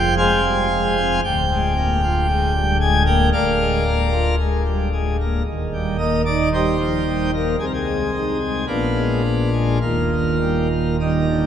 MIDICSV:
0, 0, Header, 1, 2, 480
1, 0, Start_track
1, 0, Key_signature, -3, "major"
1, 0, Tempo, 1050788
1, 563, Time_signature, 4, 2, 24, 8
1, 1999, Tempo, 1071429
1, 3439, Tempo, 1090909
1, 3919, Tempo, 1158301
1, 5072, End_track
2, 0, Start_track
2, 0, Title_t, "Pipe organ"
2, 0, Program_c, 0, 19
2, 0, Note_on_c, 0, 29, 78
2, 0, Note_on_c, 0, 41, 73
2, 0, Note_on_c, 0, 65, 62
2, 0, Note_on_c, 0, 79, 111
2, 65, Note_off_c, 0, 79, 0
2, 69, Note_off_c, 0, 65, 0
2, 79, Note_on_c, 0, 56, 61
2, 80, Note_on_c, 0, 80, 124
2, 82, Note_on_c, 0, 72, 89
2, 82, Note_on_c, 0, 77, 91
2, 187, Note_off_c, 0, 56, 0
2, 203, Note_on_c, 0, 55, 51
2, 305, Note_off_c, 0, 55, 0
2, 322, Note_on_c, 0, 56, 59
2, 430, Note_off_c, 0, 56, 0
2, 442, Note_on_c, 0, 60, 63
2, 545, Note_off_c, 0, 60, 0
2, 546, Note_off_c, 0, 29, 0
2, 547, Note_off_c, 0, 41, 0
2, 549, Note_off_c, 0, 72, 0
2, 549, Note_off_c, 0, 77, 0
2, 549, Note_off_c, 0, 80, 0
2, 565, Note_on_c, 0, 38, 73
2, 565, Note_on_c, 0, 79, 119
2, 566, Note_on_c, 0, 26, 70
2, 687, Note_on_c, 0, 56, 57
2, 793, Note_off_c, 0, 56, 0
2, 809, Note_on_c, 0, 58, 61
2, 914, Note_off_c, 0, 58, 0
2, 930, Note_on_c, 0, 65, 60
2, 1034, Note_off_c, 0, 65, 0
2, 1048, Note_on_c, 0, 56, 61
2, 1153, Note_off_c, 0, 56, 0
2, 1166, Note_on_c, 0, 55, 53
2, 1265, Note_off_c, 0, 79, 0
2, 1266, Note_off_c, 0, 55, 0
2, 1283, Note_on_c, 0, 56, 61
2, 1283, Note_on_c, 0, 80, 112
2, 1383, Note_off_c, 0, 80, 0
2, 1389, Note_off_c, 0, 56, 0
2, 1398, Note_on_c, 0, 58, 60
2, 1399, Note_on_c, 0, 79, 116
2, 1501, Note_off_c, 0, 79, 0
2, 1505, Note_off_c, 0, 58, 0
2, 1511, Note_off_c, 0, 26, 0
2, 1511, Note_off_c, 0, 38, 0
2, 1519, Note_on_c, 0, 77, 97
2, 1520, Note_on_c, 0, 38, 62
2, 1521, Note_on_c, 0, 26, 59
2, 1522, Note_on_c, 0, 70, 76
2, 1522, Note_on_c, 0, 74, 76
2, 1646, Note_on_c, 0, 56, 59
2, 1749, Note_off_c, 0, 56, 0
2, 1763, Note_on_c, 0, 58, 56
2, 1868, Note_off_c, 0, 58, 0
2, 1882, Note_on_c, 0, 65, 53
2, 1985, Note_off_c, 0, 77, 0
2, 1987, Note_off_c, 0, 70, 0
2, 1987, Note_off_c, 0, 74, 0
2, 1989, Note_off_c, 0, 65, 0
2, 2008, Note_on_c, 0, 56, 59
2, 2112, Note_off_c, 0, 56, 0
2, 2124, Note_on_c, 0, 55, 51
2, 2225, Note_off_c, 0, 55, 0
2, 2246, Note_on_c, 0, 56, 55
2, 2351, Note_off_c, 0, 56, 0
2, 2371, Note_on_c, 0, 58, 57
2, 2464, Note_off_c, 0, 26, 0
2, 2464, Note_off_c, 0, 38, 0
2, 2469, Note_off_c, 0, 58, 0
2, 2485, Note_on_c, 0, 27, 66
2, 2485, Note_on_c, 0, 39, 67
2, 2606, Note_on_c, 0, 55, 51
2, 2711, Note_off_c, 0, 55, 0
2, 2720, Note_on_c, 0, 58, 56
2, 2721, Note_on_c, 0, 75, 100
2, 2823, Note_off_c, 0, 75, 0
2, 2828, Note_off_c, 0, 58, 0
2, 2841, Note_on_c, 0, 63, 56
2, 2842, Note_on_c, 0, 74, 101
2, 2944, Note_off_c, 0, 74, 0
2, 2948, Note_off_c, 0, 63, 0
2, 2965, Note_on_c, 0, 55, 53
2, 2967, Note_on_c, 0, 67, 84
2, 2967, Note_on_c, 0, 72, 107
2, 2968, Note_on_c, 0, 63, 84
2, 3071, Note_off_c, 0, 55, 0
2, 3084, Note_on_c, 0, 53, 47
2, 3184, Note_off_c, 0, 53, 0
2, 3206, Note_on_c, 0, 55, 49
2, 3310, Note_off_c, 0, 55, 0
2, 3311, Note_off_c, 0, 72, 0
2, 3312, Note_off_c, 0, 63, 0
2, 3312, Note_off_c, 0, 67, 0
2, 3325, Note_on_c, 0, 70, 78
2, 3327, Note_on_c, 0, 58, 52
2, 3423, Note_off_c, 0, 27, 0
2, 3423, Note_off_c, 0, 39, 0
2, 3424, Note_off_c, 0, 70, 0
2, 3425, Note_off_c, 0, 58, 0
2, 3440, Note_on_c, 0, 36, 58
2, 3442, Note_on_c, 0, 48, 63
2, 3442, Note_on_c, 0, 68, 85
2, 3466, Note_off_c, 0, 68, 0
2, 3470, Note_on_c, 0, 70, 75
2, 3495, Note_off_c, 0, 70, 0
2, 3503, Note_on_c, 0, 68, 87
2, 3558, Note_on_c, 0, 56, 45
2, 3663, Note_off_c, 0, 56, 0
2, 3680, Note_on_c, 0, 63, 45
2, 3786, Note_off_c, 0, 63, 0
2, 3799, Note_on_c, 0, 56, 45
2, 3902, Note_off_c, 0, 56, 0
2, 3905, Note_off_c, 0, 36, 0
2, 3906, Note_off_c, 0, 48, 0
2, 3908, Note_off_c, 0, 68, 0
2, 3915, Note_on_c, 0, 46, 58
2, 3915, Note_on_c, 0, 59, 60
2, 3916, Note_on_c, 0, 34, 59
2, 3916, Note_on_c, 0, 62, 62
2, 3917, Note_on_c, 0, 65, 80
2, 4031, Note_on_c, 0, 56, 44
2, 4138, Note_off_c, 0, 56, 0
2, 4143, Note_off_c, 0, 59, 0
2, 4152, Note_on_c, 0, 59, 45
2, 4258, Note_off_c, 0, 59, 0
2, 4270, Note_on_c, 0, 56, 44
2, 4373, Note_off_c, 0, 56, 0
2, 4375, Note_off_c, 0, 46, 0
2, 4376, Note_off_c, 0, 34, 0
2, 4376, Note_off_c, 0, 62, 0
2, 4376, Note_off_c, 0, 65, 0
2, 4386, Note_on_c, 0, 27, 53
2, 4388, Note_on_c, 0, 39, 53
2, 4388, Note_on_c, 0, 65, 80
2, 4389, Note_on_c, 0, 58, 64
2, 4514, Note_on_c, 0, 51, 41
2, 4622, Note_off_c, 0, 51, 0
2, 4633, Note_on_c, 0, 55, 43
2, 4743, Note_off_c, 0, 55, 0
2, 4749, Note_off_c, 0, 58, 0
2, 4757, Note_on_c, 0, 58, 42
2, 4862, Note_off_c, 0, 65, 0
2, 4865, Note_off_c, 0, 58, 0
2, 4879, Note_on_c, 0, 51, 42
2, 4879, Note_on_c, 0, 55, 44
2, 4880, Note_on_c, 0, 63, 58
2, 4881, Note_on_c, 0, 58, 43
2, 4986, Note_off_c, 0, 51, 0
2, 4998, Note_on_c, 0, 50, 36
2, 5072, Note_off_c, 0, 27, 0
2, 5072, Note_off_c, 0, 39, 0
2, 5072, Note_off_c, 0, 50, 0
2, 5072, Note_off_c, 0, 55, 0
2, 5072, Note_off_c, 0, 58, 0
2, 5072, Note_off_c, 0, 63, 0
2, 5072, End_track
0, 0, End_of_file